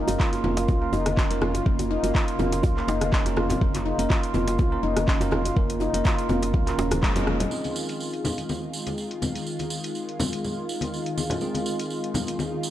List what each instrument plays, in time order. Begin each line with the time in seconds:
Already playing: analog synth pad C#3 A#3 F4
0.08 fm bass F1, tine electric piano A#3 C#4 F4 A#4, closed hi-hat, djembe tone
0.20 handpan F4, kick, clap
0.33 closed hi-hat, djembe tone
0.44 fm bass F1, tine electric piano A#3 C#4 F4 A#4, handpan F4, high conga, low conga
0.57 closed hi-hat, djembe slap
0.68 fm bass C2, handpan F4, kick, djembe tone, high conga
0.82 tine electric piano A#3 C#4 F4 A#4
0.93 fm bass F1, handpan D#4, djembe tone
1.06 cross-stick, closed hi-hat, high conga
1.17 handpan C#4, kick, clap, djembe tone
1.30 fm bass F1, tine electric piano A#3 C#4 F4 A#4, closed hi-hat
1.41 handpan F4, cross-stick, high conga, low conga
1.54 closed hi-hat, djembe tone
1.66 fm bass F1, handpan A#3, tine electric piano A#3 C#4 F4 A#4, kick
1.79 closed hi-hat, high conga, djembe tone
1.91 handpan D#4
2.03 fm bass F1, tine electric piano A#3 C#4 F4 A#4, closed hi-hat, djembe tone
2.15 handpan F4, kick, clap
2.28 closed hi-hat
2.39 fm bass F1, tine electric piano A#3 C#4 F4 A#4, handpan F4, djembe tone, high conga, low conga
2.52 closed hi-hat, djembe slap
2.63 fm bass C2, handpan F4, kick, djembe tone, low conga
2.77 tine electric piano A#3 C#4 F4 A#4, clap
2.88 fm bass F1, handpan D#4, djembe slap, djembe tone
3.01 cross-stick, closed hi-hat, high conga
3.12 handpan C#4, kick, clap
3.25 fm bass F1, tine electric piano A#3 C#4 F4 A#4, closed hi-hat, djembe tone
3.37 handpan F4, cross-stick, high conga
3.50 closed hi-hat, djembe tone, low conga
3.61 fm bass F1, handpan A#3, tine electric piano A#3 C#4 F4 A#4, kick
3.74 clap, closed hi-hat, djembe tone, high conga
3.85 handpan D#4
3.98 fm bass F1, tine electric piano A#3 C#4 F4 A#4, closed hi-hat
4.10 handpan F4, kick, clap, djembe tone
4.23 closed hi-hat
4.34 fm bass F1, tine electric piano A#3 C#4 F4 A#4, handpan F4, djembe tone, high conga, low conga
4.47 closed hi-hat, djembe slap
4.59 fm bass C2, handpan F4, kick, djembe tone, high conga
4.72 tine electric piano A#3 C#4 F4 A#4
4.83 fm bass F1, handpan D#4
4.96 cross-stick, closed hi-hat, djembe tone, high conga
5.08 handpan C#4, kick, clap
5.20 fm bass F1, tine electric piano A#3 C#4 F4 A#4, closed hi-hat, djembe tone
5.31 handpan F4, cross-stick, high conga, low conga
5.45 closed hi-hat, djembe tone
5.56 fm bass F1, handpan A#3, tine electric piano A#3 C#4 F4 A#4, kick
5.69 closed hi-hat, high conga
5.80 handpan D#4, djembe tone
5.94 fm bass F1, tine electric piano A#3 C#4 F4 A#4, closed hi-hat
6.05 handpan F4, kick, clap, djembe tone
6.18 closed hi-hat
6.29 fm bass F1, tine electric piano A#3 C#4 F4 A#4, handpan F4, djembe tone, high conga, low conga
6.42 closed hi-hat, djembe slap
6.54 fm bass C2, handpan F4, kick, low conga
6.67 tine electric piano A#3 C#4 F4 A#4, clap, closed hi-hat, djembe tone
6.78 fm bass D#1, handpan C#4, djembe slap
6.91 handpan F3, cross-stick, closed hi-hat, djembe tone, high conga
7.03 handpan G#3, kick, clap
7.16 fm bass F1, tine electric piano A#3 C#4 F4 A#4, closed hi-hat, djembe tone, low conga
7.27 handpan G#3, cross-stick, high conga
7.40 closed hi-hat, low conga
7.51 analog synth pad D#3 G#3 F4, tine electric piano C4 D#4 F4 G#4, tambourine
7.64 closed hi-hat, tambourine, high conga
7.76 tambourine
7.89 closed hi-hat, tambourine
8.00 tambourine
8.13 closed hi-hat
8.25 tambourine, high conga, low conga
8.38 closed hi-hat, tambourine
8.49 tambourine, high conga
8.73 tambourine
8.87 closed hi-hat, tambourine, high conga
8.98 tambourine
9.11 closed hi-hat
9.22 tambourine, high conga, low conga
9.35 closed hi-hat, tambourine
9.47 tambourine
9.59 closed hi-hat, tambourine, high conga
9.70 tambourine
9.84 closed hi-hat, tambourine
9.95 tambourine
10.09 closed hi-hat
10.20 tambourine, high conga, low conga
10.32 closed hi-hat, tambourine
10.44 tambourine, low conga
10.69 tambourine
10.81 closed hi-hat, tambourine, high conga
10.94 tambourine
11.06 closed hi-hat
11.18 tambourine, high conga
11.30 closed hi-hat, tambourine, low conga
11.41 tine electric piano C4 D#4 F4 G#4, tambourine
11.55 closed hi-hat, tambourine, high conga
11.66 tambourine
11.79 closed hi-hat, tambourine
11.90 tambourine
12.04 closed hi-hat
12.14 tambourine, high conga, low conga
12.27 closed hi-hat, tambourine
12.39 tambourine, high conga
12.63 tambourine